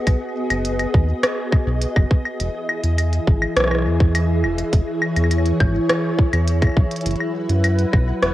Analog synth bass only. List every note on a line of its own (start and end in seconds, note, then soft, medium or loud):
0.07 0.17 B1 loud
0.50 0.86 F#1 medium
0.94 1.14 D#2 loud
1.67 1.86 B1 loud
1.96 2.06 F#1 medium
2.40 2.50 E1 loud
2.84 3.20 E2 medium
3.27 3.47 G#1 loud
3.56 3.87 B1 medium
3.85 4.45 E2 medium
4.44 4.63 E1 medium
4.73 4.83 E1 medium
5.17 5.53 E2 medium
5.60 5.80 G#1 loud
6.33 6.69 E2 medium
6.77 6.87 B1 medium
7.06 7.16 F#1 loud
7.50 7.85 F#2 medium
7.93 8.13 B1 loud
8.22 8.34 E1 medium